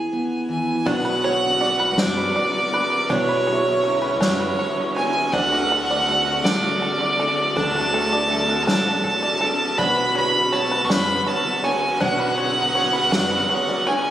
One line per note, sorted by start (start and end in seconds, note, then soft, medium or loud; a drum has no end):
0.00 0.86 E2 medium
0.00 0.47 E3 soft
0.00 0.11 B3 soft
0.00 0.82 G#4 soft
0.00 0.49 G#5 medium
0.13 3.11 B3 soft
0.49 0.82 E3 soft
0.49 0.88 G#5 medium
0.85 3.06 B1 medium
0.85 1.98 B1 loud
0.85 1.61 B2 medium
0.85 3.06 B2 medium
0.85 1.56 F#3 medium
0.85 1.99 F#3 medium
0.85 1.58 B3 medium
0.85 1.56 D4 medium
0.85 1.61 D4 medium
0.85 1.60 D4 medium
0.85 3.08 F#4 loud
0.85 1.61 F#4 medium
0.85 1.56 B4 medium
0.85 1.56 C#5 medium
0.85 1.61 C#5 medium
0.85 2.01 F#5 loud
0.85 kick loud
0.85 ride medium
1.05 1.60 B4 medium
1.24 1.99 C#5 medium
1.24 ride medium
1.60 1.97 B3 medium
1.60 1.97 D4 medium
1.60 1.96 F#4 medium
1.60 1.99 C#5 medium
1.60 2.35 D5 medium
1.60 ride medium
1.80 2.16 B4 medium
1.97 2.27 F#2 loud
1.97 2.73 B2 medium
1.97 2.68 F#3 medium
1.97 3.09 F#3 medium
1.97 2.73 B3 medium
1.97 2.68 D4 medium
1.97 2.73 D4 medium
1.97 2.72 F#4 medium
1.97 2.68 B4 medium
1.97 2.68 D5 medium
1.97 3.11 D5 medium
1.97 snare loud
1.97 ride medium
2.17 2.72 B4 medium
2.35 3.10 D5 medium
2.35 ride medium
2.72 3.09 B3 soft
2.72 3.09 D4 soft
2.72 3.10 F#4 medium
2.72 3.27 B4 medium
2.72 ride medium
3.09 4.21 B1 loud
3.09 5.29 B1 medium
3.09 3.84 B2 medium
3.09 5.29 B2 medium
3.09 4.22 F#3 medium
3.09 3.80 F#3 medium
3.09 3.83 B3 medium
3.09 3.84 D4 loud
3.09 3.85 D4 medium
3.09 3.80 D4 medium
3.09 5.31 E4 medium
3.09 3.86 F#4 medium
3.09 3.80 B4 medium
3.09 4.21 C#5 loud
3.09 3.80 C#5 medium
3.09 3.85 C#5 medium
3.09 kick loud
3.09 ride medium
3.29 4.01 B4 medium
3.47 3.82 C#5 medium
3.47 ride medium
3.84 4.21 B3 medium
3.84 4.21 D4 medium
3.84 4.20 F#4 medium
3.84 4.58 C#5 medium
3.84 4.19 C#5 medium
3.84 ride medium
4.02 4.39 B4 medium
4.21 4.51 F#2 loud
4.21 4.97 B2 medium
4.21 4.91 F#3 medium
4.21 5.32 F#3 medium
4.21 4.96 B3 medium
4.21 4.96 D4 medium
4.21 4.91 D4 medium
4.21 4.97 D4 medium
4.21 4.96 F#4 medium
4.21 4.91 B4 medium
4.21 4.93 C#5 medium
4.21 4.92 C#5 loud
4.21 4.91 C#5 medium
4.21 snare loud
4.21 ride medium
4.40 5.15 B4 medium
4.59 4.95 C#5 medium
4.59 ride medium
4.95 5.32 D4 soft
4.95 5.32 F#4 soft
4.95 5.33 C#5 medium
4.95 5.34 C#5 medium
4.95 5.34 G#5 loud
4.95 ride medium
4.99 5.33 B3 soft
5.32 6.44 D2 loud
5.32 7.52 D2 medium
5.32 6.46 D3 medium
5.32 7.52 D3 medium
5.32 6.45 F#3 medium
5.32 6.02 F#3 medium
5.32 9.75 F#3 medium
5.32 6.03 A3 medium
5.32 9.75 A3 medium
5.32 6.05 A3 medium
5.32 6.03 D4 medium
5.32 6.07 D4 medium
5.32 6.08 D4 loud
5.32 7.54 F#4 loud
5.32 6.08 F#4 medium
5.32 6.03 A4 medium
5.32 6.03 D5 medium
5.32 6.09 D5 medium
5.32 6.45 F#5 loud
5.32 kick loud
5.32 ride loud
5.52 6.26 F#4 medium
5.71 6.07 A4 medium
5.71 ride medium
5.91 6.64 D5 medium
6.07 6.44 A3 medium
6.07 6.44 D4 medium
6.07 6.43 F#4 medium
6.07 6.81 A4 medium
6.07 6.43 D5 medium
6.07 ride medium
6.27 6.62 F#4 medium
6.44 6.74 A1 loud
6.44 7.20 D3 medium
6.44 7.14 F#3 medium
6.44 7.56 F#3 medium
6.44 7.14 A3 medium
6.44 7.19 A3 medium
6.44 7.14 D4 medium
6.44 7.19 D4 medium
6.44 7.18 F#4 medium
6.44 7.14 A4 medium
6.44 7.58 D5 loud
6.44 7.17 D5 medium
6.44 snare loud
6.44 ride loud
6.63 7.38 F#4 medium
6.82 7.18 A4 medium
6.82 ride medium
7.01 7.75 D5 medium
7.17 7.55 A3 soft
7.17 7.56 D4 medium
7.17 7.56 F#4 medium
7.17 7.93 A4 medium
7.17 7.55 D5 medium
7.17 ride medium
7.55 9.75 D2 medium
7.55 8.67 D2 loud
7.55 8.30 D3 medium
7.55 9.75 D3 medium
7.55 8.26 F#3 medium
7.55 8.68 F#3 medium
7.55 8.26 A3 medium
7.55 8.28 A3 medium
7.55 8.26 D4 medium
7.55 8.31 D4 loud
7.55 8.29 D4 medium
7.55 8.31 F#4 loud
7.55 8.26 A4 medium
7.55 9.77 A4 loud
7.55 8.26 B4 medium
7.55 8.32 D5 loud
7.55 8.67 A5 loud
7.55 kick loud
7.55 ride loud
7.75 8.48 F#4 medium
7.94 8.30 A4 medium
7.94 ride medium
8.12 8.86 D5 medium
8.29 8.67 A3 medium
8.29 8.66 D4 medium
8.29 8.66 F#4 medium
8.29 9.03 A4 medium
8.29 8.66 D5 medium
8.29 ride medium
8.49 8.85 F#4 medium
8.67 8.96 A1 loud
8.67 9.43 D3 medium
8.67 9.37 F#3 medium
8.67 9.78 F#3 medium
8.67 9.37 A3 medium
8.67 9.42 A3 medium
8.67 9.42 D4 medium
8.67 9.37 D4 medium
8.67 9.42 D4 medium
8.67 9.41 F#4 medium
8.67 9.37 A4 medium
8.67 9.40 D5 medium
8.67 9.37 D5 medium
8.67 9.79 A5 loud
8.67 snare loud
8.67 ride medium
8.86 9.60 F#4 medium
9.04 9.40 A4 medium
9.04 kick medium
9.04 ride medium
9.23 9.79 D5 medium
9.40 9.79 A3 soft
9.40 9.78 D4 soft
9.40 9.79 F#4 soft
9.40 9.79 A4 medium
9.40 9.78 D5 medium
9.40 ride medium
9.77 11.97 B1 medium
9.77 10.90 B1 medium
9.77 10.52 B2 medium
9.77 11.97 B2 medium
9.77 14.11 D3 medium
9.77 10.48 F#3 medium
9.77 10.90 F#3 medium
9.77 14.11 B3 medium
9.77 10.50 B3 medium
9.77 10.48 D4 medium
9.77 10.53 D4 medium
9.77 10.52 D4 loud
9.77 14.11 F#4 loud
9.77 10.53 F#4 loud
9.77 10.48 B4 medium
9.77 10.48 C#5 medium
9.77 10.54 C#5 medium
9.77 10.15 B5 loud
9.77 kick loud
9.77 ride medium
9.97 10.70 B4 medium
10.15 10.51 C#5 medium
10.15 10.54 B5 loud
10.15 ride medium
10.51 10.89 B3 medium
10.51 10.89 D4 medium
10.51 10.88 F#4 medium
10.51 11.25 C#5 medium
10.51 10.88 C#5 medium
10.51 10.86 A5 loud
10.51 ride medium
10.71 11.07 B4 medium
10.85 10.93 C#6 medium
10.89 11.19 F#2 loud
10.89 11.65 B2 medium
10.89 11.59 F#3 medium
10.89 12.00 F#3 medium
10.89 11.65 B3 medium
10.89 11.59 D4 medium
10.89 11.64 D4 medium
10.89 11.66 D4 medium
10.89 11.65 F#4 medium
10.89 11.59 B4 medium
10.89 11.62 C#5 medium
10.89 11.59 C#5 medium
10.89 11.29 B5 loud
10.89 snare loud
10.89 ride medium
11.08 11.83 B4 medium
11.27 11.63 C#5 medium
11.27 11.66 A5 loud
11.27 ride medium
11.64 11.99 B3 soft
11.64 12.00 D4 soft
11.64 12.01 F#4 medium
11.64 12.01 C#5 medium
11.64 12.37 C#5 medium
11.64 12.01 G#5 loud
11.64 ride medium
11.99 14.11 B1 medium
11.99 13.13 B1 loud
11.99 12.75 B2 medium
11.99 14.11 B2 medium
11.99 12.70 F#3 medium
11.99 13.14 F#3 medium
11.99 12.74 B3 medium
11.99 12.70 D4 medium
11.99 12.75 D4 loud
11.99 12.76 D4 medium
11.99 12.77 F#4 medium
11.99 12.71 B4 medium
11.99 12.71 C#5 loud
11.99 12.76 C#5 medium
11.99 13.88 F#5 loud
11.99 kick loud
11.99 ride loud
12.19 12.92 B4 medium
12.38 12.74 C#5 medium
12.38 ride medium
12.75 13.13 B3 medium
12.75 13.12 D4 medium
12.75 13.11 F#4 medium
12.75 13.48 C#5 medium
12.75 13.11 C#5 medium
12.75 ride medium
12.93 13.30 B4 medium
13.12 13.42 F#2 loud
13.12 13.88 B2 medium
13.12 13.82 F#3 medium
13.12 13.88 F#3 medium
13.12 13.88 B3 medium
13.12 13.69 D4 medium
13.12 13.82 D4 medium
13.12 13.87 D4 medium
13.12 13.86 F#4 medium
13.12 13.82 B4 medium
13.12 13.84 C#5 medium
13.12 snare loud
13.12 ride medium
13.31 14.06 B4 medium
13.50 13.86 C#5 loud
13.50 ride medium
13.69 14.11 D5 medium
13.86 14.11 B3 soft
13.86 14.11 D4 soft
13.86 14.11 F#4 medium
13.86 14.11 C#5 medium
13.86 14.11 C#5 loud
13.86 14.11 G#5 medium
13.86 ride medium